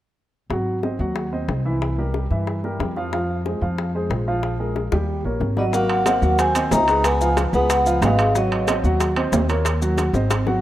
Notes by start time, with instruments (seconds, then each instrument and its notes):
0.50 upright bass G#1, grand piano F#3 F#4 F#5, high bongo
0.83 grand piano C4 C5 D#5, high bongo
0.99 upright bass D#2, grand piano F#3 F#4 F#5
1.16 high bongo
1.33 grand piano C4 C5 D#5
1.48 upright bass C2, high bongo, low bongo
1.65 grand piano E3 E4 E5
1.82 high bongo
1.98 grand piano G3 G4 A#4
2.14 high bongo
2.30 upright bass G2, grand piano E3 E4 E5, high bongo
2.47 high bongo
2.64 grand piano G3 G4 A#4, high bongo
2.79 upright bass F2, high bongo, low bongo
2.96 grand piano F3 F4 F5, high bongo
3.13 grand piano F3 F4 F5, high bongo
3.45 grand piano G#3 G#4 C5, high bongo
3.61 upright bass F2, grand piano F3 F4 F5
3.78 high bongo
3.95 grand piano G#3 G#4 C5
4.10 upright bass A#1, high bongo, low bongo
4.28 grand piano F3 F4 F5
4.43 high bongo
4.60 grand piano G#3 G#4 A#4
4.76 high bongo
4.92 upright bass D#2, grand piano G3 G4 G5, high bongo
5.24 upright bass A#1, grand piano A#3 A#4 C#5
5.40 upright bass G#1, low bongo
5.57 grand piano F#3 F#4 F#5, tenor saxophone G3, vibraphone D#5, low bongo
5.73 grand piano F#3 F#4 F#5, tenor saxophone A#3, vibraphone F#5, high bongo, maracas
5.89 high timbale
6.06 tenor saxophone A#3, grand piano C4 C5 D#5, vibraphone F#5, high bongo, high timbale, low timbale, maracas
6.22 upright bass D#2, grand piano F#3 F#4 F#5, maracas
6.39 tenor saxophone C4, vibraphone G#5, high bongo, high timbale, maracas
6.55 grand piano C4 C5 D#5, high timbale, maracas
6.71 upright bass C#2, tenor saxophone D#4, vibraphone A#5, high bongo, low bongo, low timbale, maracas
6.88 grand piano G#3 G#4 B4, high timbale, maracas
7.04 tenor saxophone B3, vibraphone G#5, high bongo, high timbale, maracas
7.21 grand piano F3 F4 F5, maracas
7.37 high bongo, high timbale, low timbale, maracas
7.53 upright bass C#2, grand piano G#3 G#4 B4, tenor saxophone B3, vibraphone F#5, high bongo, maracas
7.70 high bongo, high timbale, maracas
7.86 grand piano F3 F4 F5, high bongo, maracas
8.02 upright bass G#1, grand piano G#3 G#4 B4, tenor saxophone G#3, vibraphone F5, high bongo, low bongo, high timbale, low timbale, maracas
8.19 high bongo, high timbale, maracas
8.35 grand piano F#3 F#4 F#5, tenor saxophone F#3, vibraphone D#5, high bongo, maracas
8.52 high timbale
8.68 grand piano C4 C5 D#5, high bongo, high timbale, low timbale, maracas
8.84 upright bass D#2, grand piano F#3 F#4 F#5, maracas
9.00 high bongo, high timbale, maracas
9.16 grand piano C4 C5 D#5, high timbale
9.32 upright bass D#2, high bongo, low bongo, low timbale, maracas
9.49 grand piano A#3 A#4 C#5, high timbale, maracas
9.65 high bongo, high timbale, maracas
9.82 grand piano F#3 F#4 F#5, maracas
9.98 high bongo, high timbale, low timbale, maracas
10.13 upright bass G#1, grand piano C4 C5 D#5, high bongo, maracas
10.30 high bongo, high timbale, maracas
10.47 grand piano F#3 F#4 F#5, low bongo